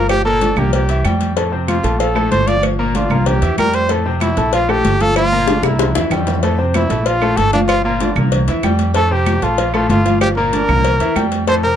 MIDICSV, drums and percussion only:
0, 0, Header, 1, 2, 480
1, 0, Start_track
1, 0, Key_signature, -1, "major"
1, 0, Tempo, 315956
1, 150, Time_signature, 4, 2, 24, 8
1, 17867, End_track
2, 0, Start_track
2, 0, Title_t, "Drums"
2, 142, Note_on_c, 9, 56, 105
2, 145, Note_on_c, 9, 75, 70
2, 152, Note_on_c, 9, 63, 31
2, 294, Note_off_c, 9, 56, 0
2, 297, Note_off_c, 9, 75, 0
2, 304, Note_off_c, 9, 63, 0
2, 395, Note_on_c, 9, 63, 38
2, 547, Note_off_c, 9, 63, 0
2, 629, Note_on_c, 9, 56, 71
2, 638, Note_on_c, 9, 63, 93
2, 781, Note_off_c, 9, 56, 0
2, 790, Note_off_c, 9, 63, 0
2, 863, Note_on_c, 9, 75, 73
2, 880, Note_on_c, 9, 63, 33
2, 880, Note_on_c, 9, 64, 81
2, 1015, Note_off_c, 9, 75, 0
2, 1032, Note_off_c, 9, 63, 0
2, 1032, Note_off_c, 9, 64, 0
2, 1109, Note_on_c, 9, 56, 117
2, 1121, Note_on_c, 9, 63, 35
2, 1261, Note_off_c, 9, 56, 0
2, 1273, Note_off_c, 9, 63, 0
2, 1349, Note_on_c, 9, 56, 75
2, 1364, Note_on_c, 9, 63, 34
2, 1501, Note_off_c, 9, 56, 0
2, 1516, Note_off_c, 9, 63, 0
2, 1588, Note_on_c, 9, 75, 72
2, 1593, Note_on_c, 9, 56, 74
2, 1601, Note_on_c, 9, 63, 80
2, 1740, Note_off_c, 9, 75, 0
2, 1745, Note_off_c, 9, 56, 0
2, 1753, Note_off_c, 9, 63, 0
2, 1833, Note_on_c, 9, 56, 67
2, 1842, Note_on_c, 9, 63, 33
2, 1985, Note_off_c, 9, 56, 0
2, 1994, Note_off_c, 9, 63, 0
2, 2077, Note_on_c, 9, 56, 113
2, 2085, Note_on_c, 9, 63, 31
2, 2229, Note_off_c, 9, 56, 0
2, 2237, Note_off_c, 9, 63, 0
2, 2321, Note_on_c, 9, 63, 36
2, 2473, Note_off_c, 9, 63, 0
2, 2557, Note_on_c, 9, 75, 62
2, 2558, Note_on_c, 9, 56, 73
2, 2559, Note_on_c, 9, 63, 96
2, 2708, Note_off_c, 9, 75, 0
2, 2710, Note_off_c, 9, 56, 0
2, 2711, Note_off_c, 9, 63, 0
2, 2798, Note_on_c, 9, 56, 73
2, 2808, Note_on_c, 9, 63, 33
2, 2950, Note_off_c, 9, 56, 0
2, 2960, Note_off_c, 9, 63, 0
2, 3040, Note_on_c, 9, 56, 113
2, 3045, Note_on_c, 9, 63, 36
2, 3192, Note_off_c, 9, 56, 0
2, 3197, Note_off_c, 9, 63, 0
2, 3279, Note_on_c, 9, 75, 68
2, 3286, Note_on_c, 9, 63, 33
2, 3431, Note_off_c, 9, 75, 0
2, 3438, Note_off_c, 9, 63, 0
2, 3520, Note_on_c, 9, 56, 75
2, 3525, Note_on_c, 9, 63, 87
2, 3672, Note_off_c, 9, 56, 0
2, 3676, Note_off_c, 9, 63, 0
2, 3760, Note_on_c, 9, 63, 83
2, 3761, Note_on_c, 9, 56, 70
2, 3911, Note_off_c, 9, 63, 0
2, 3913, Note_off_c, 9, 56, 0
2, 3998, Note_on_c, 9, 56, 98
2, 4000, Note_on_c, 9, 75, 63
2, 4003, Note_on_c, 9, 63, 30
2, 4150, Note_off_c, 9, 56, 0
2, 4152, Note_off_c, 9, 75, 0
2, 4155, Note_off_c, 9, 63, 0
2, 4244, Note_on_c, 9, 63, 34
2, 4396, Note_off_c, 9, 63, 0
2, 4478, Note_on_c, 9, 63, 101
2, 4480, Note_on_c, 9, 56, 74
2, 4630, Note_off_c, 9, 63, 0
2, 4632, Note_off_c, 9, 56, 0
2, 4721, Note_on_c, 9, 75, 68
2, 4723, Note_on_c, 9, 63, 34
2, 4723, Note_on_c, 9, 64, 77
2, 4873, Note_off_c, 9, 75, 0
2, 4875, Note_off_c, 9, 63, 0
2, 4875, Note_off_c, 9, 64, 0
2, 4957, Note_on_c, 9, 56, 115
2, 4966, Note_on_c, 9, 63, 36
2, 4966, Note_on_c, 9, 64, 80
2, 5109, Note_off_c, 9, 56, 0
2, 5118, Note_off_c, 9, 63, 0
2, 5118, Note_off_c, 9, 64, 0
2, 5196, Note_on_c, 9, 56, 68
2, 5207, Note_on_c, 9, 63, 36
2, 5348, Note_off_c, 9, 56, 0
2, 5359, Note_off_c, 9, 63, 0
2, 5439, Note_on_c, 9, 56, 71
2, 5445, Note_on_c, 9, 75, 68
2, 5448, Note_on_c, 9, 63, 86
2, 5591, Note_off_c, 9, 56, 0
2, 5597, Note_off_c, 9, 75, 0
2, 5600, Note_off_c, 9, 63, 0
2, 5675, Note_on_c, 9, 56, 66
2, 5686, Note_on_c, 9, 63, 35
2, 5826, Note_off_c, 9, 56, 0
2, 5838, Note_off_c, 9, 63, 0
2, 5913, Note_on_c, 9, 56, 107
2, 5928, Note_on_c, 9, 63, 32
2, 6065, Note_off_c, 9, 56, 0
2, 6080, Note_off_c, 9, 63, 0
2, 6167, Note_on_c, 9, 63, 38
2, 6319, Note_off_c, 9, 63, 0
2, 6399, Note_on_c, 9, 75, 69
2, 6400, Note_on_c, 9, 56, 75
2, 6408, Note_on_c, 9, 63, 87
2, 6551, Note_off_c, 9, 75, 0
2, 6552, Note_off_c, 9, 56, 0
2, 6560, Note_off_c, 9, 63, 0
2, 6638, Note_on_c, 9, 56, 62
2, 6651, Note_on_c, 9, 63, 33
2, 6790, Note_off_c, 9, 56, 0
2, 6803, Note_off_c, 9, 63, 0
2, 6878, Note_on_c, 9, 56, 116
2, 6891, Note_on_c, 9, 63, 36
2, 7030, Note_off_c, 9, 56, 0
2, 7043, Note_off_c, 9, 63, 0
2, 7125, Note_on_c, 9, 75, 68
2, 7130, Note_on_c, 9, 63, 39
2, 7277, Note_off_c, 9, 75, 0
2, 7282, Note_off_c, 9, 63, 0
2, 7363, Note_on_c, 9, 56, 75
2, 7366, Note_on_c, 9, 63, 88
2, 7515, Note_off_c, 9, 56, 0
2, 7518, Note_off_c, 9, 63, 0
2, 7604, Note_on_c, 9, 56, 63
2, 7607, Note_on_c, 9, 63, 83
2, 7756, Note_off_c, 9, 56, 0
2, 7759, Note_off_c, 9, 63, 0
2, 7840, Note_on_c, 9, 56, 112
2, 7840, Note_on_c, 9, 75, 67
2, 7850, Note_on_c, 9, 63, 33
2, 7991, Note_off_c, 9, 56, 0
2, 7992, Note_off_c, 9, 75, 0
2, 8002, Note_off_c, 9, 63, 0
2, 8096, Note_on_c, 9, 63, 35
2, 8248, Note_off_c, 9, 63, 0
2, 8318, Note_on_c, 9, 56, 76
2, 8318, Note_on_c, 9, 60, 92
2, 8336, Note_on_c, 9, 63, 88
2, 8470, Note_off_c, 9, 56, 0
2, 8470, Note_off_c, 9, 60, 0
2, 8488, Note_off_c, 9, 63, 0
2, 8558, Note_on_c, 9, 60, 70
2, 8562, Note_on_c, 9, 75, 70
2, 8710, Note_off_c, 9, 60, 0
2, 8714, Note_off_c, 9, 75, 0
2, 8801, Note_on_c, 9, 56, 105
2, 8801, Note_on_c, 9, 60, 94
2, 8810, Note_on_c, 9, 64, 95
2, 8953, Note_off_c, 9, 56, 0
2, 8953, Note_off_c, 9, 60, 0
2, 8962, Note_off_c, 9, 64, 0
2, 9044, Note_on_c, 9, 56, 71
2, 9044, Note_on_c, 9, 61, 92
2, 9196, Note_off_c, 9, 56, 0
2, 9196, Note_off_c, 9, 61, 0
2, 9283, Note_on_c, 9, 56, 71
2, 9285, Note_on_c, 9, 75, 77
2, 9293, Note_on_c, 9, 64, 92
2, 9435, Note_off_c, 9, 56, 0
2, 9437, Note_off_c, 9, 75, 0
2, 9445, Note_off_c, 9, 64, 0
2, 9524, Note_on_c, 9, 56, 66
2, 9524, Note_on_c, 9, 61, 69
2, 9538, Note_on_c, 9, 64, 98
2, 9675, Note_off_c, 9, 56, 0
2, 9675, Note_off_c, 9, 61, 0
2, 9690, Note_off_c, 9, 64, 0
2, 9766, Note_on_c, 9, 56, 102
2, 9775, Note_on_c, 9, 63, 32
2, 9918, Note_off_c, 9, 56, 0
2, 9927, Note_off_c, 9, 63, 0
2, 10021, Note_on_c, 9, 63, 36
2, 10173, Note_off_c, 9, 63, 0
2, 10244, Note_on_c, 9, 56, 78
2, 10244, Note_on_c, 9, 75, 67
2, 10256, Note_on_c, 9, 63, 94
2, 10396, Note_off_c, 9, 56, 0
2, 10396, Note_off_c, 9, 75, 0
2, 10408, Note_off_c, 9, 63, 0
2, 10485, Note_on_c, 9, 56, 71
2, 10496, Note_on_c, 9, 63, 36
2, 10637, Note_off_c, 9, 56, 0
2, 10648, Note_off_c, 9, 63, 0
2, 10723, Note_on_c, 9, 56, 114
2, 10738, Note_on_c, 9, 63, 35
2, 10875, Note_off_c, 9, 56, 0
2, 10890, Note_off_c, 9, 63, 0
2, 10964, Note_on_c, 9, 75, 70
2, 10976, Note_on_c, 9, 63, 36
2, 11116, Note_off_c, 9, 75, 0
2, 11128, Note_off_c, 9, 63, 0
2, 11203, Note_on_c, 9, 56, 78
2, 11213, Note_on_c, 9, 63, 85
2, 11355, Note_off_c, 9, 56, 0
2, 11365, Note_off_c, 9, 63, 0
2, 11442, Note_on_c, 9, 56, 68
2, 11459, Note_on_c, 9, 63, 94
2, 11594, Note_off_c, 9, 56, 0
2, 11611, Note_off_c, 9, 63, 0
2, 11680, Note_on_c, 9, 56, 110
2, 11682, Note_on_c, 9, 75, 70
2, 11697, Note_on_c, 9, 63, 32
2, 11832, Note_off_c, 9, 56, 0
2, 11834, Note_off_c, 9, 75, 0
2, 11849, Note_off_c, 9, 63, 0
2, 11932, Note_on_c, 9, 63, 36
2, 12084, Note_off_c, 9, 63, 0
2, 12160, Note_on_c, 9, 56, 72
2, 12171, Note_on_c, 9, 63, 95
2, 12312, Note_off_c, 9, 56, 0
2, 12323, Note_off_c, 9, 63, 0
2, 12401, Note_on_c, 9, 75, 73
2, 12407, Note_on_c, 9, 63, 35
2, 12407, Note_on_c, 9, 64, 86
2, 12553, Note_off_c, 9, 75, 0
2, 12559, Note_off_c, 9, 63, 0
2, 12559, Note_off_c, 9, 64, 0
2, 12639, Note_on_c, 9, 56, 123
2, 12651, Note_on_c, 9, 63, 39
2, 12651, Note_on_c, 9, 64, 73
2, 12791, Note_off_c, 9, 56, 0
2, 12803, Note_off_c, 9, 63, 0
2, 12803, Note_off_c, 9, 64, 0
2, 12879, Note_on_c, 9, 56, 74
2, 12885, Note_on_c, 9, 63, 37
2, 13031, Note_off_c, 9, 56, 0
2, 13037, Note_off_c, 9, 63, 0
2, 13114, Note_on_c, 9, 56, 75
2, 13117, Note_on_c, 9, 63, 87
2, 13118, Note_on_c, 9, 75, 71
2, 13266, Note_off_c, 9, 56, 0
2, 13269, Note_off_c, 9, 63, 0
2, 13270, Note_off_c, 9, 75, 0
2, 13351, Note_on_c, 9, 56, 66
2, 13360, Note_on_c, 9, 63, 37
2, 13503, Note_off_c, 9, 56, 0
2, 13512, Note_off_c, 9, 63, 0
2, 13588, Note_on_c, 9, 56, 102
2, 13599, Note_on_c, 9, 63, 36
2, 13740, Note_off_c, 9, 56, 0
2, 13751, Note_off_c, 9, 63, 0
2, 13837, Note_on_c, 9, 63, 37
2, 13988, Note_off_c, 9, 63, 0
2, 14074, Note_on_c, 9, 56, 78
2, 14074, Note_on_c, 9, 75, 66
2, 14078, Note_on_c, 9, 63, 95
2, 14226, Note_off_c, 9, 56, 0
2, 14226, Note_off_c, 9, 75, 0
2, 14230, Note_off_c, 9, 63, 0
2, 14315, Note_on_c, 9, 56, 67
2, 14315, Note_on_c, 9, 63, 36
2, 14467, Note_off_c, 9, 56, 0
2, 14467, Note_off_c, 9, 63, 0
2, 14556, Note_on_c, 9, 56, 118
2, 14559, Note_on_c, 9, 63, 40
2, 14708, Note_off_c, 9, 56, 0
2, 14711, Note_off_c, 9, 63, 0
2, 14793, Note_on_c, 9, 75, 65
2, 14796, Note_on_c, 9, 63, 38
2, 14945, Note_off_c, 9, 75, 0
2, 14948, Note_off_c, 9, 63, 0
2, 15034, Note_on_c, 9, 63, 91
2, 15040, Note_on_c, 9, 56, 72
2, 15186, Note_off_c, 9, 63, 0
2, 15192, Note_off_c, 9, 56, 0
2, 15277, Note_on_c, 9, 63, 91
2, 15279, Note_on_c, 9, 56, 70
2, 15429, Note_off_c, 9, 63, 0
2, 15431, Note_off_c, 9, 56, 0
2, 15513, Note_on_c, 9, 75, 72
2, 15515, Note_on_c, 9, 56, 103
2, 15518, Note_on_c, 9, 63, 34
2, 15665, Note_off_c, 9, 75, 0
2, 15667, Note_off_c, 9, 56, 0
2, 15670, Note_off_c, 9, 63, 0
2, 15764, Note_on_c, 9, 63, 33
2, 15916, Note_off_c, 9, 63, 0
2, 15997, Note_on_c, 9, 56, 78
2, 16002, Note_on_c, 9, 63, 89
2, 16149, Note_off_c, 9, 56, 0
2, 16154, Note_off_c, 9, 63, 0
2, 16239, Note_on_c, 9, 75, 70
2, 16244, Note_on_c, 9, 63, 35
2, 16244, Note_on_c, 9, 64, 88
2, 16391, Note_off_c, 9, 75, 0
2, 16396, Note_off_c, 9, 63, 0
2, 16396, Note_off_c, 9, 64, 0
2, 16476, Note_on_c, 9, 56, 114
2, 16483, Note_on_c, 9, 63, 36
2, 16628, Note_off_c, 9, 56, 0
2, 16635, Note_off_c, 9, 63, 0
2, 16715, Note_on_c, 9, 56, 72
2, 16722, Note_on_c, 9, 63, 35
2, 16867, Note_off_c, 9, 56, 0
2, 16874, Note_off_c, 9, 63, 0
2, 16952, Note_on_c, 9, 75, 72
2, 16957, Note_on_c, 9, 63, 94
2, 16958, Note_on_c, 9, 56, 70
2, 17104, Note_off_c, 9, 75, 0
2, 17109, Note_off_c, 9, 63, 0
2, 17110, Note_off_c, 9, 56, 0
2, 17193, Note_on_c, 9, 56, 67
2, 17194, Note_on_c, 9, 63, 37
2, 17345, Note_off_c, 9, 56, 0
2, 17346, Note_off_c, 9, 63, 0
2, 17433, Note_on_c, 9, 56, 107
2, 17437, Note_on_c, 9, 63, 33
2, 17585, Note_off_c, 9, 56, 0
2, 17589, Note_off_c, 9, 63, 0
2, 17671, Note_on_c, 9, 63, 34
2, 17823, Note_off_c, 9, 63, 0
2, 17867, End_track
0, 0, End_of_file